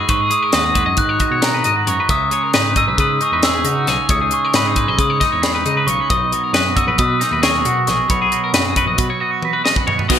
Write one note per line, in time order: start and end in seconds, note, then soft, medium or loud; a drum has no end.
0.00 0.30 G#3 medium
0.00 0.12 B5 medium
0.07 1.86 G#2 medium
0.07 0.30 G#2 medium
0.07 0.21 B4 medium
0.07 0.33 C#6 loud
0.07 kick loud
0.07 closed hi-hat medium
0.21 0.42 G#4 medium
0.30 0.74 G#3 medium
0.30 0.52 D#6 medium
0.30 closed hi-hat medium
0.42 0.54 A#4 medium
0.53 0.85 D#2 medium
0.53 1.19 F#4 medium
0.53 0.65 B4 medium
0.53 1.00 D#6 medium
0.53 snare loud
0.53 closed hi-hat medium
0.65 0.75 G#4 medium
0.74 2.31 G#3 medium
0.74 0.86 B4 medium
0.74 kick medium
0.74 closed hi-hat medium
0.86 0.98 F#2 medium
0.86 0.99 D#5 medium
0.97 1.19 G#2 medium
0.97 2.06 D#3 medium
0.97 1.09 B4 medium
0.97 1.44 F#6 medium
0.97 kick medium
0.97 closed hi-hat medium
1.09 1.20 C#5 medium
1.20 1.63 F#4 soft
1.20 1.31 D#5 medium
1.20 kick medium
1.20 closed hi-hat medium
1.30 1.62 B2 medium
1.30 1.54 C#5 medium
1.42 2.06 A#4 medium
1.42 1.85 A#5 medium
1.42 snare loud
1.42 closed hi-hat medium
1.54 1.65 B4 medium
1.64 1.86 G#2 medium
1.64 2.07 F#4 medium
1.64 1.76 D#5 medium
1.64 closed hi-hat medium
1.76 1.87 B4 medium
1.87 1.98 F#2 medium
1.87 2.09 G#2 medium
1.87 1.98 C#5 medium
1.87 1.98 C#6 medium
1.87 closed hi-hat soft
2.00 2.09 B4 medium
2.09 2.30 C#2 medium
2.09 2.99 C#3 medium
2.09 2.32 E5 medium
2.09 2.73 D#6 loud
2.09 kick loud
2.09 closed hi-hat medium
2.31 2.76 G#3 medium
2.31 2.43 C#5 medium
2.31 closed hi-hat medium
2.43 2.54 A#4 medium
2.53 2.86 G#2 medium
2.53 3.21 D#4 medium
2.53 2.76 B4 medium
2.53 snare loud
2.53 closed hi-hat medium
2.76 4.08 G#3 medium
2.76 2.88 D#5 medium
2.76 3.00 E6 medium
2.76 kick medium
2.76 closed hi-hat medium
2.87 2.98 B1 medium
2.87 2.99 B4 medium
2.97 3.87 G#2 medium
2.97 3.19 C#3 medium
2.97 3.22 B4 medium
2.97 3.23 D#6 medium
2.97 kick loud
2.97 closed hi-hat medium
3.21 3.64 D#4 medium
3.21 3.33 G#4 medium
3.21 3.45 C#6 medium
3.21 closed hi-hat soft
3.32 3.63 E2 medium
3.32 3.43 B4 medium
3.43 3.66 G#4 medium
3.43 4.13 B4 medium
3.43 4.07 E6 medium
3.43 snare loud
3.43 closed hi-hat medium
3.65 3.86 C#3 medium
3.65 4.55 D#4 medium
3.65 3.88 F#4 medium
3.65 closed hi-hat medium
3.87 3.98 B1 medium
3.87 4.08 C#3 medium
3.87 4.10 G#4 medium
3.87 snare soft
3.87 closed hi-hat soft
4.09 4.30 C#2 medium
4.09 4.99 C#3 medium
4.09 4.21 C#5 medium
4.09 4.34 D#6 medium
4.09 kick loud
4.09 closed hi-hat medium
4.21 4.45 G#4 medium
4.31 4.75 G#3 medium
4.31 4.56 C#6 medium
4.31 closed hi-hat medium
4.45 4.55 A#4 medium
4.54 4.86 G#2 medium
4.54 5.21 D#4 medium
4.54 4.67 B4 medium
4.54 5.01 B5 medium
4.54 snare loud
4.54 closed hi-hat medium
4.67 4.77 G#4 medium
4.76 6.08 G#3 medium
4.76 4.88 B4 medium
4.76 kick medium
4.76 closed hi-hat medium
4.88 4.98 B1 medium
4.88 4.99 D#5 medium
4.97 5.87 G#2 medium
4.97 5.20 C#3 medium
4.97 5.10 B4 medium
4.97 5.46 D#6 medium
4.97 kick medium
4.97 closed hi-hat medium
5.10 5.20 C#5 medium
5.20 5.65 D#4 medium
5.20 5.32 D#5 medium
5.20 kick medium
5.20 snare soft
5.20 closed hi-hat medium
5.32 5.64 E2 medium
5.32 5.54 C#5 medium
5.42 5.53 G#4 medium
5.42 5.85 B5 medium
5.42 snare loud
5.42 closed hi-hat medium
5.53 6.09 B4 medium
5.53 5.66 B4 medium
5.65 5.87 C#3 medium
5.65 6.55 D#4 medium
5.65 5.77 D#5 medium
5.65 closed hi-hat medium
5.77 5.89 B4 medium
5.87 5.98 B1 medium
5.87 6.11 C#3 medium
5.87 6.00 C#5 medium
5.87 6.11 C#6 medium
5.87 closed hi-hat medium
6.00 6.10 B4 medium
6.10 6.31 B1 medium
6.10 6.98 B2 medium
6.10 6.33 D#5 medium
6.10 6.79 D#6 loud
6.10 kick loud
6.10 closed hi-hat medium
6.32 6.75 F#3 medium
6.32 6.43 C#5 medium
6.32 closed hi-hat medium
6.43 6.54 A#4 medium
6.53 6.85 F#2 medium
6.53 7.20 F#4 medium
6.53 6.77 B4 medium
6.53 snare loud
6.53 closed hi-hat medium
6.76 8.31 F#3 medium
6.76 6.87 D#5 medium
6.76 7.00 E6 medium
6.76 kick medium
6.76 closed hi-hat medium
6.87 6.98 A#1 medium
6.87 6.98 B4 medium
6.98 7.87 B2 medium
6.98 7.20 B2 loud
6.98 7.21 B4 medium
6.98 7.45 D#6 medium
6.98 kick loud
6.98 closed hi-hat medium
7.20 7.32 D#4 medium
7.20 7.32 G#4 medium
7.20 snare soft
7.20 closed hi-hat medium
7.31 7.63 D#2 medium
7.31 7.64 F#4 soft
7.31 7.42 B4 medium
7.43 7.66 G#4 medium
7.43 8.08 A#4 medium
7.43 7.85 C#6 medium
7.43 snare loud
7.43 closed hi-hat medium
7.65 7.86 B2 medium
7.65 8.54 F#4 medium
7.65 7.89 F#4 medium
7.65 closed hi-hat medium
7.87 7.99 A#1 medium
7.87 8.08 B2 medium
7.87 8.11 G#4 medium
7.87 7.98 C#6 medium
7.87 snare soft
7.87 closed hi-hat soft
8.08 8.31 B1 medium
8.08 8.96 B2 medium
8.08 8.21 C#5 medium
8.08 9.62 B5 medium
8.08 kick loud
8.08 closed hi-hat medium
8.22 8.43 G#4 medium
8.32 8.75 F#3 medium
8.32 closed hi-hat medium
8.44 8.54 A#4 medium
8.53 8.85 F#2 medium
8.53 9.20 F#4 medium
8.53 8.65 B4 medium
8.53 snare loud
8.53 closed hi-hat medium
8.65 8.77 G#4 medium
8.76 10.19 F#3 medium
8.76 8.87 B4 medium
8.76 kick medium
8.76 closed hi-hat medium
8.86 8.98 A#1 medium
8.86 8.99 D#5 medium
8.97 9.87 B2 medium
8.97 9.09 B2 medium
8.97 9.10 B4 medium
8.97 kick loud
8.97 closed hi-hat medium
9.10 9.20 C#5 medium
9.20 9.65 F#4 medium
9.20 9.31 D#5 medium
9.31 9.53 C#5 medium
9.42 10.08 B4 medium
9.42 high tom medium
9.53 9.64 B4 medium
9.65 9.76 D#4 medium
9.65 9.76 D#5 medium
9.65 snare medium
9.76 10.10 F#4 soft
9.76 9.87 B4 medium
9.76 kick medium
9.87 10.07 B2 medium
9.87 9.98 C#5 medium
9.87 floor tom medium
9.98 10.08 B4 medium
9.98 floor tom medium
10.09 10.19 B2 medium
10.09 10.19 F#3 medium
10.09 10.19 B3 loud
10.09 10.19 D#4 loud
10.09 10.19 D#5 loud
10.09 kick loud
10.09 crash loud